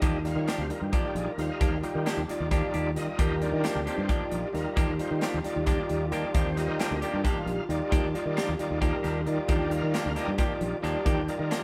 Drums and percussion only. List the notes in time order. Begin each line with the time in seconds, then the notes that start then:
0.02 kick, closed hi-hat
0.25 snare, closed hi-hat
0.48 snare, closed hi-hat
0.70 closed hi-hat
0.93 kick, closed hi-hat
1.16 closed hi-hat
1.39 snare, closed hi-hat
1.61 kick, closed hi-hat
1.83 closed hi-hat
2.06 snare, closed hi-hat
2.29 snare, closed hi-hat
2.51 kick, snare, closed hi-hat
2.74 closed hi-hat
2.96 snare, closed hi-hat
3.19 kick, closed hi-hat
3.42 closed hi-hat
3.64 snare, closed hi-hat
3.87 closed hi-hat
4.09 kick, closed hi-hat
4.32 closed hi-hat
4.55 snare, closed hi-hat
4.77 kick, closed hi-hat
4.99 closed hi-hat
5.21 snare, closed hi-hat
5.44 snare, closed hi-hat
5.66 kick, snare, closed hi-hat
5.89 closed hi-hat
6.12 snare, closed hi-hat
6.34 kick, closed hi-hat
6.57 snare, closed hi-hat
6.80 snare, closed hi-hat
7.02 closed hi-hat
7.25 kick, snare, closed hi-hat
7.47 closed hi-hat
7.70 closed hi-hat
7.92 kick, closed hi-hat
8.15 closed hi-hat
8.37 snare, closed hi-hat
8.59 closed hi-hat
8.82 kick, closed hi-hat
9.04 snare, closed hi-hat
9.27 closed hi-hat
9.49 kick, closed hi-hat
9.71 closed hi-hat
9.94 snare, closed hi-hat
10.16 snare, closed hi-hat
10.38 kick, snare, closed hi-hat
10.61 closed hi-hat
10.84 snare, closed hi-hat
11.06 kick, closed hi-hat
11.28 closed hi-hat
11.51 snare, closed hi-hat